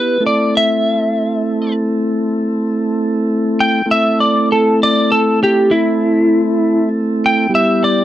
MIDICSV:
0, 0, Header, 1, 3, 480
1, 0, Start_track
1, 0, Tempo, 607903
1, 171, Time_signature, 12, 3, 24, 8
1, 6352, End_track
2, 0, Start_track
2, 0, Title_t, "Lead electric guitar"
2, 0, Program_c, 0, 29
2, 0, Note_on_c, 0, 71, 78
2, 178, Note_off_c, 0, 71, 0
2, 209, Note_on_c, 0, 74, 65
2, 423, Note_off_c, 0, 74, 0
2, 450, Note_on_c, 0, 76, 73
2, 1362, Note_off_c, 0, 76, 0
2, 2846, Note_on_c, 0, 79, 78
2, 3062, Note_off_c, 0, 79, 0
2, 3089, Note_on_c, 0, 76, 79
2, 3303, Note_off_c, 0, 76, 0
2, 3319, Note_on_c, 0, 74, 66
2, 3538, Note_off_c, 0, 74, 0
2, 3570, Note_on_c, 0, 69, 66
2, 3784, Note_off_c, 0, 69, 0
2, 3815, Note_on_c, 0, 74, 83
2, 4027, Note_off_c, 0, 74, 0
2, 4040, Note_on_c, 0, 69, 76
2, 4259, Note_off_c, 0, 69, 0
2, 4291, Note_on_c, 0, 67, 77
2, 4504, Note_off_c, 0, 67, 0
2, 4510, Note_on_c, 0, 64, 84
2, 5433, Note_off_c, 0, 64, 0
2, 5731, Note_on_c, 0, 79, 77
2, 5945, Note_off_c, 0, 79, 0
2, 5961, Note_on_c, 0, 76, 80
2, 6180, Note_off_c, 0, 76, 0
2, 6191, Note_on_c, 0, 74, 71
2, 6352, Note_off_c, 0, 74, 0
2, 6352, End_track
3, 0, Start_track
3, 0, Title_t, "Tonewheel organ"
3, 0, Program_c, 1, 16
3, 0, Note_on_c, 1, 59, 59
3, 0, Note_on_c, 1, 64, 61
3, 0, Note_on_c, 1, 67, 64
3, 141, Note_off_c, 1, 59, 0
3, 141, Note_off_c, 1, 64, 0
3, 142, Note_off_c, 1, 67, 0
3, 160, Note_on_c, 1, 57, 61
3, 162, Note_on_c, 1, 69, 54
3, 165, Note_on_c, 1, 60, 55
3, 165, Note_on_c, 1, 64, 59
3, 3016, Note_off_c, 1, 57, 0
3, 3017, Note_off_c, 1, 69, 0
3, 3019, Note_off_c, 1, 60, 0
3, 3019, Note_off_c, 1, 64, 0
3, 3045, Note_on_c, 1, 64, 57
3, 3047, Note_on_c, 1, 69, 61
3, 3049, Note_on_c, 1, 57, 57
3, 3049, Note_on_c, 1, 60, 59
3, 5900, Note_off_c, 1, 64, 0
3, 5901, Note_off_c, 1, 69, 0
3, 5902, Note_off_c, 1, 57, 0
3, 5902, Note_off_c, 1, 60, 0
3, 5915, Note_on_c, 1, 59, 63
3, 5915, Note_on_c, 1, 64, 60
3, 5918, Note_on_c, 1, 55, 64
3, 5919, Note_on_c, 1, 67, 62
3, 6352, Note_off_c, 1, 55, 0
3, 6352, Note_off_c, 1, 59, 0
3, 6352, Note_off_c, 1, 64, 0
3, 6352, Note_off_c, 1, 67, 0
3, 6352, End_track
0, 0, End_of_file